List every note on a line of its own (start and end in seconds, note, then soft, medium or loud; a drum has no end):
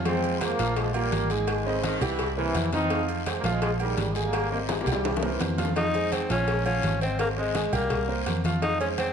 0.00 0.53 F2 medium
0.05 0.35 F3 medium
0.05 0.40 G#3 medium
0.05 0.40 C4 loud
0.05 0.35 F4 medium
0.05 0.35 F5 medium
0.05 cowbell loud
0.05 high conga soft
0.05 low agogo loud
0.05 long guiro medium
0.24 high conga soft
0.24 low agogo medium
0.41 0.77 F3 medium
0.41 0.56 G#3 medium
0.41 0.78 A#3 loud
0.41 0.56 G#4 medium
0.41 0.56 C5 medium
0.41 cowbell medium
0.41 high conga medium
0.41 low timbale medium
0.41 low agogo loud
0.41 short guiro medium
0.59 1.09 A#1 loud
0.59 0.88 F3 loud
0.59 0.88 F4 medium
0.59 0.88 F5 loud
0.59 cowbell medium
0.59 short guiro medium
0.76 0.95 F3 medium
0.76 0.95 G#3 loud
0.76 cowbell loud
0.76 high conga soft
0.76 low agogo medium
0.76 long guiro medium
0.94 1.31 G3 medium
0.94 1.24 A#3 medium
0.94 1.30 A#3 loud
0.94 1.24 F4 medium
0.94 1.24 A#4 medium
0.94 high conga soft
0.94 low agogo loud
1.12 1.96 G#1 medium
1.12 cowbell medium
1.12 high conga medium
1.12 low timbale medium
1.12 short guiro medium
1.30 2.02 D#3 medium
1.30 1.59 G#3 medium
1.30 2.02 G#3 loud
1.30 1.60 G#4 medium
1.30 1.60 G#5 loud
1.30 high conga soft
1.30 low agogo medium
1.30 short guiro medium
1.47 cowbell loud
1.47 low agogo loud
1.47 long guiro medium
1.66 1.82 C#3 medium
1.66 1.95 C4 loud
1.66 1.96 C5 medium
1.66 1.96 D#5 medium
1.66 high conga soft
1.83 2.01 D#3 loud
1.83 cowbell medium
1.83 high conga loud
1.83 low timbale medium
1.83 low agogo medium
1.83 short guiro medium
2.01 2.51 C2 loud
2.01 2.28 E3 loud
2.01 2.31 G3 medium
2.01 2.31 G4 loud
2.01 2.31 G5 loud
2.01 high conga soft
2.01 low conga medium
2.01 low agogo loud
2.01 short guiro medium
2.19 cowbell loud
2.19 high conga soft
2.19 low agogo medium
2.19 long guiro medium
2.37 2.71 C3 medium
2.37 2.70 E3 loud
2.37 2.66 A#3 medium
2.37 2.67 A#4 medium
2.37 2.67 C5 medium
2.37 high conga soft
2.54 3.38 F2 loud
2.54 cowbell medium
2.54 high conga loud
2.54 low timbale medium
2.54 low agogo loud
2.54 short guiro medium
2.73 2.88 F3 loud
2.73 3.07 C4 loud
2.73 3.06 D#4 loud
2.73 2.88 F4 loud
2.73 2.88 F5 medium
2.73 cowbell medium
2.73 high conga medium
2.73 short guiro medium
2.90 3.20 F3 loud
2.90 3.20 F4 medium
2.90 3.20 F5 loud
2.90 cowbell loud
2.90 low agogo loud
2.90 long guiro medium
3.09 high conga soft
3.09 low agogo medium
3.26 3.41 G#3 medium
3.26 3.33 G#3 medium
3.26 3.33 C4 loud
3.26 3.41 G#4 medium
3.26 3.42 C5 medium
3.26 cowbell medium
3.26 high conga medium
3.26 low timbale medium
3.26 low agogo loud
3.26 short guiro medium
3.39 3.94 A#1 loud
3.39 3.50 G3 medium
3.39 3.50 A#3 loud
3.44 3.74 F3 loud
3.44 3.74 F4 loud
3.44 3.74 F5 loud
3.44 cowbell medium
3.44 short guiro medium
3.51 3.62 F3 medium
3.51 3.61 G#3 loud
3.62 3.71 F3 medium
3.62 3.71 G#3 loud
3.62 cowbell loud
3.62 high conga soft
3.62 low agogo medium
3.62 long guiro medium
3.80 4.08 D#3 medium
3.80 4.08 G3 loud
3.80 4.09 G#3 medium
3.80 4.10 G#4 medium
3.80 4.10 A#4 medium
3.80 high conga soft
3.80 low agogo loud
3.97 4.81 G#1 medium
3.97 cowbell medium
3.97 high conga medium
3.97 low timbale medium
3.97 short guiro medium
4.11 4.22 F3 medium
4.11 4.22 G#3 medium
4.15 4.45 G#3 medium
4.15 4.45 G#4 loud
4.15 4.45 G#5 loud
4.15 low agogo medium
4.15 short guiro medium
4.23 4.52 G3 medium
4.23 4.51 A#3 loud
4.33 cowbell loud
4.33 high conga soft
4.33 low agogo loud
4.33 long guiro medium
4.52 4.61 G3 medium
4.52 4.60 A#3 medium
4.52 4.81 C4 medium
4.52 4.81 C5 medium
4.52 4.81 D#5 medium
4.52 high conga soft
4.69 4.76 D#3 medium
4.69 4.75 G#3 medium
4.69 cowbell medium
4.69 high bongo loud
4.69 high conga medium
4.69 high timbale loud
4.69 low agogo loud
4.69 short guiro medium
4.81 4.88 G3 medium
4.81 4.87 A#3 medium
4.81 high bongo medium
4.86 5.36 C2 loud
4.86 5.16 G3 loud
4.86 5.16 G4 loud
4.86 5.17 G5 medium
4.86 high conga soft
4.86 low conga medium
4.86 low agogo loud
4.86 short guiro medium
4.92 5.05 D#3 medium
4.92 5.04 G3 medium
4.92 high bongo loud
5.04 5.17 E3 medium
5.04 5.17 G3 medium
5.04 cowbell loud
5.04 low bongo medium
5.04 high conga soft
5.04 high timbale medium
5.04 low agogo medium
5.04 long guiro medium
5.17 low bongo loud
5.22 5.57 C3 medium
5.22 5.57 E3 medium
5.22 5.52 A#3 medium
5.22 5.52 A#4 medium
5.22 5.52 C5 medium
5.22 high conga soft
5.22 low timbale medium
5.40 6.24 F2 medium
5.40 cowbell medium
5.40 high conga loud
5.40 low timbale loud
5.40 low agogo medium
5.40 short guiro medium
5.58 5.73 F3 medium
5.58 5.73 F4 medium
5.58 5.73 F5 medium
5.58 cowbell medium
5.58 high conga medium
5.58 low timbale medium
5.58 short guiro medium
5.65 low bongo medium
5.76 5.91 F3 medium
5.76 6.14 D#4 loud
5.76 5.91 F4 medium
5.76 5.91 F5 medium
5.76 cowbell loud
5.76 low agogo loud
5.76 long guiro medium
5.94 6.23 G#3 medium
5.94 6.24 G#4 medium
5.94 6.24 C5 medium
5.94 high conga soft
5.94 low agogo medium
6.12 6.30 C4 loud
6.12 cowbell medium
6.12 high conga medium
6.12 low timbale medium
6.12 low agogo loud
6.12 short guiro medium
6.30 6.80 A#1 loud
6.30 6.44 F3 medium
6.30 6.64 C#4 loud
6.30 6.45 F4 loud
6.30 6.45 F5 medium
6.30 cowbell medium
6.30 short guiro medium
6.48 6.63 G#3 medium
6.48 6.63 G#4 medium
6.48 6.63 A#4 medium
6.48 cowbell loud
6.48 high conga soft
6.48 low agogo medium
6.48 long guiro medium
6.66 6.95 F3 medium
6.66 6.99 C#4 loud
6.66 6.95 F4 medium
6.66 6.95 F5 loud
6.66 high conga soft
6.66 low agogo loud
6.83 7.67 G#1 medium
6.83 cowbell medium
6.83 high conga medium
6.83 low timbale medium
6.83 short guiro medium
7.01 7.31 C4 medium
7.01 7.18 C4 loud
7.01 7.31 C5 medium
7.01 7.31 D#5 medium
7.01 high conga soft
7.01 low agogo medium
7.01 short guiro medium
7.19 7.28 A#3 loud
7.19 cowbell loud
7.19 high conga soft
7.19 low agogo loud
7.19 long guiro medium
7.37 7.71 G#3 medium
7.37 7.52 C4 medium
7.37 7.52 C5 medium
7.37 7.52 D#5 medium
7.37 high conga soft
7.55 7.70 G#3 medium
7.55 7.70 G#4 medium
7.55 7.70 G#5 medium
7.55 cowbell medium
7.55 high conga loud
7.55 low timbale medium
7.55 low agogo medium
7.55 short guiro medium
7.72 8.23 C2 loud
7.72 8.02 G3 loud
7.72 8.23 A#3 loud
7.72 8.02 G4 loud
7.72 8.02 G5 medium
7.72 high conga soft
7.72 low conga medium
7.72 low agogo loud
7.72 short guiro medium
7.90 cowbell loud
7.90 high conga soft
7.90 low conga medium
7.90 low agogo medium
7.90 long guiro medium
8.08 8.38 A#3 medium
8.08 8.38 A#4 medium
8.08 8.38 C5 medium
8.08 high conga soft
8.26 9.10 F2 medium
8.26 cowbell medium
8.26 high conga medium
8.26 low timbale medium
8.26 low agogo loud
8.26 short guiro medium
8.44 8.59 F3 medium
8.44 8.59 F4 medium
8.44 8.60 F5 loud
8.44 cowbell medium
8.44 high conga medium
8.44 short guiro medium
8.62 8.77 F3 medium
8.62 8.79 D#4 loud
8.62 8.77 F4 medium
8.62 8.77 F5 loud
8.62 cowbell loud
8.62 high conga soft
8.62 low agogo loud
8.62 long guiro medium
8.80 9.09 G#3 medium
8.80 8.89 C#4 loud
8.80 9.09 G#4 medium
8.80 9.09 C5 medium
8.80 high conga soft
8.80 low agogo medium
8.98 9.13 C4 loud
8.98 cowbell medium
8.98 high conga medium
8.98 low timbale medium
8.98 low agogo loud
8.98 short guiro medium